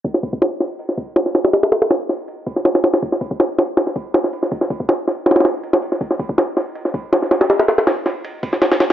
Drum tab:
RD |x---x---x---x---x---x---x---x-x-|x-x-x-x-----x---x---x---x-x-x-x-|x---x---x---x---x---x---x---x---|x---x-------x---xxxxx---x---x---|
HH |--------------------------------|--------o-----------------------|--------------------------------|--------o-----------------------|
SD |--o-----o---o-----o-----o-o-o-o-|o-o-o-o-o---o---------o-o-o-o-o-|--o-----o---o---o-o-----o-o---o-|--o-----o---o---ooooo-----o---o-|
BD |o---o-o-------------o-----------|--------------------o-----------|o---o-o-------------o-----------|o---o-o-------------------------|

RD |x---x---x---x---x---x---x---x-x-|x-x-x-x-----x---x---x---x-x-x---|
HH |--------------------------------|--------o-----------------------|
SD |--o-----o---o-----o-----o-o-o-o-|o-o-o-o-o---o---------o-o-o-o---|
BD |o---o-o-------------o-----------|--------------------o-----------|